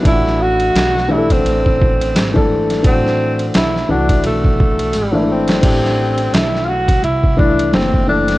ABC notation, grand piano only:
X:1
M:4/4
L:1/16
Q:"Swing 16ths" 1/4=86
K:Ador
V:1 name="Grand piano"
[E,A,D=F^F]4- [E,A,D=F^F] z [E,A,DGA]6 z [E,A,DA]3 | [E,A,DF]4- [E,A,DF] z [E,A,DF]6 z [E,A,DE]3 | [E,A,DG]6- [E,A,DG] z3 [E,A,DE]4 [E,A,DA]2 |]